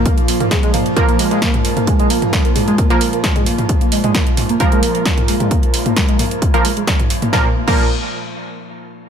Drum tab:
CC |----------------|----------------|----------------|----------------|
HH |xxoxxxoxxxoxxxox|xxoxxxoxxxoxxxox|xxoxxxoxxxoxxxox|xxoxxxoxxxoxxxox|
SD |----o-------o---|----o-------o---|----o-------o---|----o-------o---|
T2 |---o--o------o-o|---o--o------o-o|---o--o------o-o|---o--o------o-o|
BD |o---o---o---o---|o---o---o---o---|o---o---o---o---|o---o---o---o---|

CC |---x------------|
HH |----------------|
SD |o---------------|
T2 |----------------|
BD |o--o------------|